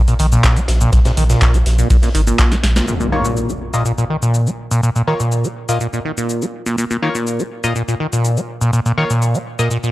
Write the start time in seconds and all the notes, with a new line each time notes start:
0.08 A#2, closed hi-hat, cabasa
0.19 A#1 D#3, closed hi-hat, open hi-hat
0.32 A#2, closed hi-hat, cabasa
0.43 kick, snare, clap, closed hi-hat, cabasa
0.57 A#3, closed hi-hat, cabasa
0.68 A#1, snare, closed hi-hat, open hi-hat
0.81 A#2, closed hi-hat, cabasa
0.92 kick, snare, closed hi-hat, cabasa
1.05 A#2, snare, closed hi-hat, cabasa
1.17 A#1 D#3, open hi-hat
1.29 A#2, snare, closed hi-hat, cabasa
1.42 kick, snare, clap, closed hi-hat, cabasa
1.54 A#1 A#3, closed hi-hat, cabasa
1.66 A#1, snare, closed hi-hat, open hi-hat
1.78 A#2, closed hi-hat, cabasa
1.90 kick, closed hi-hat, open hi-hat, cabasa
2.02 A#2, snare, closed hi-hat, cabasa
2.15 G#1 D#3, closed hi-hat, open hi-hat
2.27 A#2, closed hi-hat, cabasa
2.39 kick, snare, clap, closed hi-hat, cabasa
2.52 A#3, snare, closed hi-hat, cabasa
2.63 A#1, snare, closed hi-hat, open hi-hat
2.76 A#2, snare, closed hi-hat, cabasa
2.88 A#2, impact, cabasa
3.00 A#2, cabasa
3.12 D#3 A#3 F4 C#5
3.25 A#2, cabasa
3.37 cabasa
3.49 A#3, cabasa
3.74 A#2 A#3 F4 D#5, cabasa
3.86 A#2, cabasa
3.98 A#2, cabasa
4.10 D#3
4.22 A#2, cabasa
4.34 cabasa
4.47 A#3, cabasa
4.71 A#2, cabasa
4.83 A#2, cabasa
4.96 A#2, cabasa
5.07 D#3 A#3 F4 C#5
5.20 A#2, cabasa
5.32 cabasa
5.44 A#3, cabasa
5.69 A#2 A#3 F4 D#5, cabasa
5.81 A#2, cabasa
5.93 A#2, cabasa
6.05 D#3
6.18 A#2, cabasa
6.29 cabasa
6.42 A#3, cabasa
6.66 A#2, cabasa
6.78 A#2, cabasa
6.91 A#2, cabasa
7.03 D#3 A#3 F4 C#5
7.15 A#2, cabasa
7.27 cabasa
7.39 A#3, cabasa
7.64 A#2 A#3 F4 D#5, cabasa
7.76 A#2, cabasa
7.88 A#2, cabasa
8.00 D#3
8.13 A#2, cabasa
8.24 cabasa
8.37 A#3, cabasa
8.61 A#2, cabasa
8.73 A#2, cabasa
8.86 A#2, cabasa
8.98 D#3 A#3 F4 C#5
9.10 A#2, cabasa
9.22 cabasa
9.35 A#3, cabasa
9.59 A#2 A#3 F4 D#5, cabasa
9.71 A#2, cabasa
9.83 A#2, cabasa